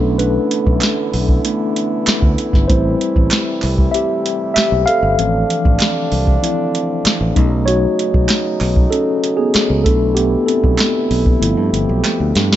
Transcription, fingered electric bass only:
0.00 0.37 B1 loud
0.67 0.79 B1 medium
1.14 1.38 B1 medium
2.07 muted fingered electric bass stroke soft
2.22 2.35 D2 medium
2.53 2.66 G1 medium
2.70 2.94 A1 loud
3.16 3.28 A1 medium
3.63 3.87 C2 medium
4.56 muted fingered electric bass stroke soft
4.72 4.84 B1 medium
5.03 5.15 G1 medium
5.18 5.43 A1 loud
5.65 5.77 A1 medium
6.12 6.36 C2 medium
7.05 muted fingered electric bass stroke soft
7.21 7.33 A1 medium
7.37 7.85 B1 loud
8.14 8.26 B1 medium
8.61 8.85 B1 medium
9.55 muted fingered electric bass stroke soft
9.70 9.86 C#2 medium
9.86 10.35 B1 medium
10.64 10.76 B1 medium
11.11 11.35 B1 medium
11.42 11.54 G1 loud
11.57 11.69 G2 medium
11.73 11.85 G1 medium
11.89 12.01 B1 loud
12.20 12.32 D2 medium
12.36 12.56 G2 loud

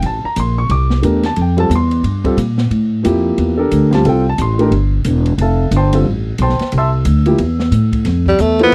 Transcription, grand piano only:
0.06 0.25 A5 medium
0.25 0.37 A#5 medium
0.40 0.58 C6 medium
0.58 0.70 C#6 medium
0.71 0.83 D6 medium
1.02 1.21 A3 medium
1.02 1.22 D4 medium
1.02 1.22 G4 medium
1.02 1.22 A#4 medium
1.26 1.37 A5 medium
1.41 1.59 G5 medium
1.57 1.68 G3 medium
1.57 1.69 C4 medium
1.57 1.69 F4 soft
1.57 1.69 A4 medium
1.57 1.71 A5 medium
1.76 2.23 C6 medium
2.24 2.36 G3 medium
2.24 2.36 C4 medium
2.24 2.36 F4 medium
2.24 2.36 A4 medium
3.03 3.53 F3 medium
3.03 3.54 A#3 medium
3.03 3.54 E4 medium
3.03 3.54 G4 medium
3.58 3.89 D4 medium
3.58 3.90 G4 medium
3.58 3.89 A4 medium
3.58 3.90 A#4 medium
3.91 4.02 G3 medium
3.91 4.03 C4 medium
3.91 4.03 F4 medium
3.91 4.03 G4 medium
3.91 4.05 A5 medium
4.05 4.23 G3 medium
4.05 4.23 C4 medium
4.05 4.23 F4 medium
4.05 4.24 A4 medium
4.05 4.26 G5 medium
4.29 4.39 A5 medium
4.42 4.90 C6 medium
4.59 4.70 A3 medium
4.59 4.70 D4 medium
4.59 4.70 G4 medium
4.59 4.71 A#4 medium
5.41 5.71 A4 medium
5.41 5.71 E5 medium
5.41 5.71 F5 medium
5.41 5.71 A5 medium
5.76 5.94 C5 medium
5.76 5.94 G5 medium
5.76 5.94 A5 medium
5.76 5.94 C6 medium
5.93 6.04 G3 medium
5.93 6.04 C4 medium
5.93 6.04 F4 medium
5.93 6.05 A4 medium
6.42 6.71 C5 medium
6.42 6.71 G5 medium
6.42 6.72 A5 medium
6.42 6.71 C6 medium
6.78 6.88 E5 medium
6.78 6.89 A5 medium
6.78 6.88 C6 medium
6.78 6.88 E6 medium
7.26 7.37 F3 medium
7.26 7.37 A#3 medium
7.26 7.37 E4 medium
7.26 7.38 G4 medium
8.59 8.75 F3 medium
8.59 8.75 A#3 medium
8.59 8.75 E4 medium
8.59 8.75 A4 medium
8.59 8.75 C5 medium

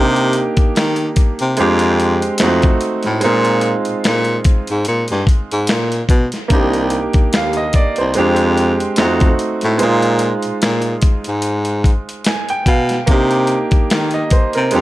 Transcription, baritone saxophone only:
0.00 0.44 C3 loud
0.58 0.65 D#3 soft
0.77 1.09 D#3 medium
1.41 1.55 C3 medium
1.59 2.23 F2 loud
2.41 2.73 F2 medium
3.06 3.19 A2 medium
3.24 3.74 A#2 loud
3.88 3.95 A#2 soft
4.07 4.38 A#2 medium
4.70 4.84 G#2 medium
4.88 5.05 A#2 medium
5.11 5.25 G2 medium
5.52 5.66 G#2 medium
5.71 6.02 A#2 medium
6.10 6.28 B2 medium
6.51 7.02 C2 loud
7.15 7.22 D#2 soft
7.36 7.67 D#2 medium
7.99 8.13 C2 medium
8.18 8.81 F2 loud
9.00 9.31 F2 medium
9.64 9.77 A2 medium
9.82 10.32 A#2 loud
10.46 10.52 A#2 soft
10.64 10.95 A#2 loud
11.28 11.92 G#2 medium
12.67 12.99 B2 loud
13.09 13.59 C3 loud
13.73 13.80 D#3 soft
13.92 14.24 D#3 medium
14.56 14.70 C3 medium
14.74 14.81 F2 loud

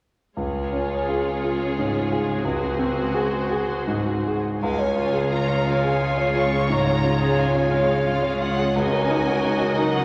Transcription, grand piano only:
0.37 2.39 C#2 soft
0.73 1.29 C#4 soft
1.09 1.40 F4 soft
1.09 1.40 G#4 soft
1.44 1.74 F4 soft
1.44 1.74 G#4 soft
1.79 2.31 G#2 soft
2.11 2.41 F4 soft
2.11 2.42 G#4 soft
2.45 4.59 C#2 soft
2.79 3.36 C4 soft
3.14 3.46 F#4 soft
3.14 3.47 G#4 soft
3.50 3.83 F#4 soft
3.50 3.84 G#4 soft
3.87 4.48 G#2 soft
4.27 4.59 F#4 soft
4.27 4.60 G#4 soft
4.63 6.68 C#2 soft
4.79 5.07 C#5 soft
4.96 5.25 F4 soft
5.13 5.42 G#4 soft
5.32 5.61 F4 soft
5.49 5.78 C#5 soft
5.67 5.96 F4 soft
5.84 6.13 G#4 soft
6.01 6.30 F4 soft
6.18 6.47 C#5 soft
6.35 6.64 F4 soft
6.53 6.81 G#4 soft
6.69 6.98 G#2 soft
6.86 7.14 C#5 soft
7.03 7.31 F4 soft
7.20 7.48 G#4 soft
7.38 7.66 F4 soft
7.55 7.83 C#5 soft
7.72 8.00 F4 soft
7.88 8.17 G#4 soft
8.07 8.35 F4 soft
8.23 8.51 C#5 soft
8.41 8.69 F4 soft
8.59 8.76 G#4 soft
8.76 10.05 C#2 soft
8.93 9.21 A#4 soft
9.10 9.38 D#4 soft
9.27 9.55 F#4 soft
9.45 9.72 D#4 soft
9.61 9.89 A#4 soft
9.78 10.05 D#4 soft
9.96 10.05 F#4 soft

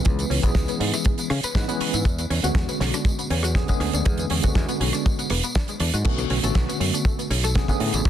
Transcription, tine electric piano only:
0.00 0.40 E3 medium
0.00 0.40 G#3 medium
0.00 0.40 B3 medium
0.00 0.41 C#4 medium
0.00 0.41 B4 medium
0.42 1.27 E3 medium
0.42 1.27 G#3 medium
0.42 1.27 B3 medium
0.42 1.28 C#4 medium
0.42 1.28 G#4 loud
1.55 1.66 E3 loud
1.55 1.66 G#3 medium
1.55 1.66 B3 medium
1.55 1.66 C#4 medium
1.55 1.67 B4 loud
1.68 2.04 E3 medium
1.68 2.04 G#3 medium
1.68 2.04 B3 medium
1.68 2.04 C#4 medium
1.68 2.04 B4 medium
2.43 3.27 D3 medium
2.43 3.27 G#3 medium
2.43 3.27 B3 medium
2.43 3.28 C#4 medium
2.43 3.28 F#4 loud
3.55 3.66 D3 loud
3.55 3.66 G#3 medium
3.55 3.66 B3 medium
3.55 3.67 C#4 medium
3.55 3.67 G#4 loud
3.68 4.40 D3 medium
3.68 4.40 G#3 medium
3.68 4.40 B3 medium
3.68 4.41 C#4 medium
3.68 4.41 G#4 medium
4.42 5.27 D3 medium
4.42 5.27 G#3 medium
4.42 5.27 B3 medium
4.42 5.28 C#4 medium
4.42 5.28 F#4 loud
6.04 6.38 D3 loud
6.04 6.38 A3 medium
6.04 6.38 B3 medium
6.04 6.38 C#4 medium
6.04 6.38 F#4 loud
6.42 7.27 D3 medium
6.42 7.27 A3 medium
6.42 7.27 B3 medium
6.42 7.28 C#4 medium
6.42 7.28 F#4 loud
7.55 7.66 D3 medium
7.55 7.66 A3 medium
7.55 7.66 B3 medium
7.55 7.66 C#4 medium
7.55 7.67 G#4 loud
7.68 8.10 D3 medium
7.68 8.10 A3 medium
7.68 8.10 B3 medium
7.68 8.10 C#4 medium
7.68 8.10 G#4 medium

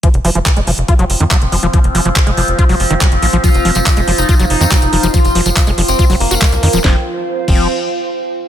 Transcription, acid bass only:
0.03 0.09 F3 loud
0.25 0.30 F3 loud
0.35 0.39 F3 loud
0.57 0.60 G#3 medium
0.67 0.71 F3 medium
0.88 0.94 F4 loud
0.99 1.05 F#3 loud
1.20 1.24 D#3 loud
1.31 1.37 F#3 medium
1.52 1.56 F3 medium
1.63 1.67 F3 loud
1.74 1.79 F3 loud
1.95 2.01 F3 loud
2.05 2.09 F3 loud
2.27 2.31 G#3 medium
2.37 2.41 F3 medium
2.59 2.64 F4 loud
2.69 2.75 F#3 loud
2.91 2.94 D#3 loud
3.01 3.07 F#3 medium
3.22 3.26 F3 medium
3.33 3.37 F3 loud
3.44 3.50 F3 loud
3.65 3.71 F3 loud
3.76 3.80 F3 loud
3.97 4.01 G#3 medium
4.08 4.11 F3 medium
4.29 4.35 F4 loud
4.39 4.45 F#3 loud
4.61 4.65 D#3 loud
4.71 4.77 F#3 medium
4.93 4.97 F3 medium
5.03 5.07 F3 loud
5.14 5.20 F3 loud
5.35 5.41 F3 loud
5.46 5.50 F3 loud
5.67 5.71 G#3 medium
5.78 5.82 F3 medium
5.99 6.05 F4 medium
6.10 6.15 F#3 loud
6.31 6.35 F#4 medium
6.42 6.45 G#3 loud
6.63 6.69 D#3 medium
6.74 6.79 F3 loud
6.84 6.96 F3 medium
7.48 7.68 F3 medium

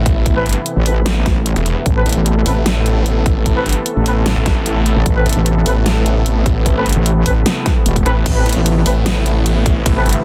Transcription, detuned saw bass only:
0.06 0.44 A1 loud
0.46 0.54 G1 loud
1.56 1.74 E1 loud
2.06 2.14 A1 medium
2.46 2.84 A1 medium
2.86 3.24 A1 medium
3.26 3.64 A1 loud
3.66 3.74 G1 medium
4.36 4.94 A1 loud
5.26 5.35 A1 medium
5.66 6.04 A1 medium
6.06 6.44 A1 loud
6.46 6.84 A1 loud
6.86 6.95 G1 medium
8.06 8.24 A1 loud
8.46 8.54 A1 medium
8.86 9.24 A1 medium
9.26 9.64 A1 loud
9.66 10.04 A1 loud
10.06 10.14 G1 medium

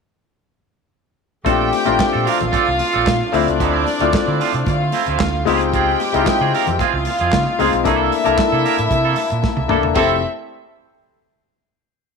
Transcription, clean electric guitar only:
1.45 1.70 C4 medium
1.45 1.71 D4 medium
1.45 1.71 A4 medium
1.72 muted clean electric guitar stroke soft
1.86 1.97 C4 medium
1.86 1.98 D4 medium
1.86 1.97 A#4 medium
2.12 2.24 C4 soft
2.12 2.25 D4 medium
2.12 2.24 A4 medium
2.25 2.42 C4 medium
2.25 2.40 D4 medium
2.25 2.40 A#4 medium
2.40 muted clean electric guitar stroke medium
2.52 2.68 C4 medium
2.52 2.67 D4 medium
2.52 2.66 A4 medium
2.67 muted clean electric guitar stroke soft
2.79 muted clean electric guitar stroke soft
2.93 3.05 C4 medium
2.93 3.05 D4 medium
2.93 3.05 A4 medium
3.21 muted clean electric guitar stroke soft
3.32 3.49 F3 medium
3.32 3.47 C4 medium
3.32 3.46 E4 medium
3.47 muted clean electric guitar stroke soft
3.60 3.85 F3 medium
3.60 3.85 C4 medium
3.60 3.85 E4 medium
3.87 muted clean electric guitar stroke soft
4.01 4.12 F3 medium
4.01 4.12 C4 medium
4.01 4.12 F4 medium
4.28 4.39 F3 soft
4.28 4.39 C4 soft
4.28 4.39 E4 medium
4.40 4.56 F3 medium
4.40 4.54 C4 medium
4.40 4.54 F4 medium
4.55 muted clean electric guitar stroke soft
4.68 muted clean electric guitar stroke soft
4.80 muted clean electric guitar stroke soft
4.93 5.09 F3 medium
4.93 5.08 C4 medium
4.93 5.08 E4 medium
5.09 5.20 F3 soft
5.09 5.20 C4 soft
5.09 5.19 E4 medium
5.35 muted clean electric guitar stroke soft
5.47 5.67 C4 medium
5.47 5.61 F4 medium
5.47 5.60 G#4 medium
5.61 muted clean electric guitar stroke soft
5.74 5.98 C4 medium
5.74 5.98 F4 medium
5.74 5.99 G#4 medium
6.00 muted clean electric guitar stroke soft
6.15 6.26 C4 soft
6.15 6.26 F4 medium
6.15 6.25 A#4 medium
6.27 muted clean electric guitar stroke soft
6.41 6.52 C4 soft
6.41 6.52 F4 soft
6.41 6.52 G#4 medium
6.54 6.69 C4 medium
6.54 6.68 F4 medium
6.54 6.68 A#4 loud
6.68 muted clean electric guitar stroke soft
6.80 6.95 C4 medium
6.80 6.94 F4 medium
6.80 6.93 G#4 medium
6.94 muted clean electric guitar stroke soft
7.06 muted clean electric guitar stroke soft
7.21 7.32 C4 soft
7.21 7.32 F4 soft
7.21 7.31 G#4 medium
7.47 muted clean electric guitar stroke soft
7.59 7.75 C4 medium
7.59 7.73 F4 medium
7.59 7.72 G#4 medium
7.73 muted clean electric guitar stroke soft
7.85 8.10 A#3 medium
7.85 8.10 E4 medium
7.85 8.11 A4 medium
8.12 muted clean electric guitar stroke soft
8.25 8.37 A#3 medium
8.25 8.37 E4 medium
8.25 8.37 A#4 medium
8.38 muted clean electric guitar stroke soft
8.52 8.63 A#3 soft
8.52 8.63 E4 medium
8.52 8.63 A4 medium
8.64 8.80 A#3 medium
8.64 8.79 E4 medium
8.64 8.78 A#4 medium
8.79 muted clean electric guitar stroke medium
8.91 muted clean electric guitar stroke soft
9.05 9.16 A#3 medium
9.05 9.16 E4 medium
9.05 9.17 A4 medium
9.17 muted clean electric guitar stroke soft
9.31 muted clean electric guitar stroke soft
9.57 muted clean electric guitar stroke soft
9.69 9.85 A#3 medium
9.69 9.83 E4 medium
9.69 9.83 A4 medium
9.84 muted clean electric guitar stroke soft
9.96 10.13 C4 medium
9.96 10.13 E4 medium
9.96 10.14 A4 medium

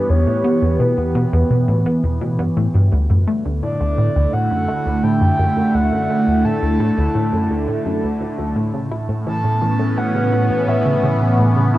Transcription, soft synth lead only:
0.00 0.11 B4 medium
0.09 0.82 C#5 loud
0.80 1.86 B4 medium
3.62 4.34 D5 medium
4.33 5.05 F#5 loud
5.03 5.76 G5 loud
5.74 6.46 F#5 loud
6.45 7.51 A5 loud
9.28 9.99 A5 loud
9.98 10.70 F#5 loud
10.68 11.39 E5 medium

